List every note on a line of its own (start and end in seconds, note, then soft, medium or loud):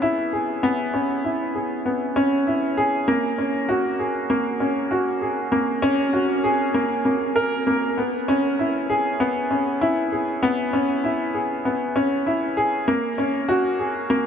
0.00 0.63 B3 medium
0.00 0.94 C#4 medium
0.00 0.02 E4 medium
0.00 0.31 E4 medium
0.00 0.33 G#4 medium
0.33 0.50 G#4 medium
0.63 0.92 B3 medium
0.94 1.23 C#4 medium
1.24 1.53 E4 medium
1.55 1.84 G#4 medium
1.86 2.15 B3 medium
2.16 2.45 C#4 medium
2.47 2.76 E4 medium
2.77 3.06 G#4 medium
3.08 3.37 A#3 medium
3.38 3.67 C#4 medium
3.69 3.98 F#4 medium
3.99 4.17 G#4 medium
4.30 4.59 A#3 medium
4.60 4.90 C#4 medium
4.91 5.20 F#4 medium
5.21 5.51 G#4 medium
5.52 5.81 A#3 medium
5.82 6.12 C#4 loud
6.13 6.43 F#4 medium
6.44 6.73 G#4 medium
6.74 7.04 A#3 medium
7.05 7.23 A#3 medium
7.36 7.65 A#4 loud
7.67 7.96 A#3 medium
7.98 8.27 B3 medium
8.28 8.57 C#4 medium
8.59 8.88 E4 medium
8.90 9.19 G#4 medium
9.20 9.49 B3 medium
9.51 9.80 C#4 medium
9.81 10.10 E4 loud
10.12 10.29 G#4 medium
10.43 10.72 B3 loud
10.73 11.02 C#4 medium
11.04 11.33 E4 medium
11.34 11.63 G#4 medium
11.65 11.94 B3 medium
11.96 12.25 C#4 medium
12.27 12.55 E4 medium
12.57 12.86 G#4 medium
12.88 13.17 A#3 medium
13.18 13.47 C#4 medium
13.49 13.78 F#4 loud
13.79 13.97 G#4 medium
14.10 14.27 A#3 medium